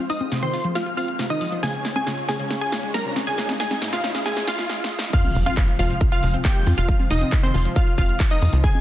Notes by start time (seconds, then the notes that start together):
Already playing: G#3 C4 F4 C5, riser
0.10 D#4 D#5 D#6, open hi-hat
0.21 C4, closed hi-hat, high conga
0.32 C3, snare, closed hi-hat
0.42 D#3 C4 C5 C6, closed hi-hat
0.53 F4, open hi-hat
0.64 F3, closed hi-hat
0.75 F4 F5 F6, snare, closed hi-hat
0.86 F4, closed hi-hat
0.97 C4 F4 F5 F6, open hi-hat
1.08 closed hi-hat
1.19 C3, snare, closed hi-hat
1.30 D#3 D#4 D#5 D#6, closed hi-hat
1.41 F3, open hi-hat
1.52 F3, closed hi-hat
1.63 C#3 G#3 C#4 G#4 C#5 G#5 G#6, snare, closed hi-hat
1.74 closed hi-hat
1.85 snare, open hi-hat
1.96 G#3 G#4 G#5 G#6, closed hi-hat, high conga
2.07 C#3, snare, closed hi-hat
2.18 closed hi-hat
2.29 C#3 G#4 G#5 G#6, snare, open hi-hat
2.39 C#3, closed hi-hat
2.50 C#3, snare, closed hi-hat
2.61 G#4 G#5 G#6, closed hi-hat
2.72 C#3, snare, open hi-hat
2.83 G#3, closed hi-hat
2.94 G3 A#4 A#5 A#6, snare, open hi-hat
3.05 C3, closed hi-hat
3.16 C#4, snare, open hi-hat, high conga
3.27 C#3 G#4 G#5 G#6, closed hi-hat
3.38 C#3 D#5, snare, closed hi-hat
3.49 C#3, snare, closed hi-hat, high conga
3.60 G#4 G#5 G#6, snare, open hi-hat
3.71 G#3, snare, closed hi-hat, high conga
3.82 G#2, snare, closed hi-hat
3.93 C3 F4 F5 F6, snare, open hi-hat
4.04 C#4, snare, open hi-hat
4.15 C#3, snare, closed hi-hat
4.26 G#4 G#5 G#6, snare, closed hi-hat
4.37 C#4, snare, closed hi-hat
4.48 G#3 F4 F5 F6, snare, open hi-hat
4.59 snare, closed hi-hat
4.70 snare
4.84 snare
4.99 snare
5.13 C3 F3 G#3 F4 F5 F6, kick, closed hi-hat, crash, impact, shaker
5.24 closed hi-hat, high conga
5.35 F1, open hi-hat, shaker
5.46 C4 F4 F5 F6, closed hi-hat, high conga, shaker
5.57 F3, kick, clap, closed hi-hat, shaker
5.68 closed hi-hat
5.79 F1 F3 F4 F5 F6, open hi-hat, shaker
5.90 F3, closed hi-hat, shaker
6.01 F3, kick, closed hi-hat, shaker
6.12 F4 F5 F6, closed hi-hat
6.23 F1 F3, open hi-hat, shaker
6.34 C4, closed hi-hat, shaker
6.45 A#3 G4 G5 G6, kick, clap, closed hi-hat, shaker
6.56 D#3, closed hi-hat
6.67 F2 F4, open hi-hat, high conga, shaker
6.78 F1 F3 F4 F5 F6, closed hi-hat, shaker
6.89 F3, kick, closed hi-hat, shaker
7.00 F3, closed hi-hat, high conga
7.10 F1 D#4 D#5 D#6, open hi-hat, shaker
7.21 C4, closed hi-hat, high conga, shaker
7.32 C3, kick, clap, closed hi-hat, shaker
7.43 D#3 C4 C5 C6, closed hi-hat
7.54 F1 F4, open hi-hat, shaker
7.65 F3, closed hi-hat, shaker
7.76 F4 F5 F6, kick, closed hi-hat, shaker
7.87 F4, closed hi-hat
7.98 F1 C4 F4 F5 F6, kick, open hi-hat, shaker
8.09 closed hi-hat, shaker
8.20 C3, kick, clap, closed hi-hat, shaker
8.31 D#3 D#4 D#5 D#6, closed hi-hat
8.42 F2 F3, open hi-hat, shaker
8.53 C#2 F3, closed hi-hat, shaker
8.64 C#3 F3 G#3 G#4 G#5 G#6, kick, closed hi-hat, shaker
8.75 closed hi-hat, high conga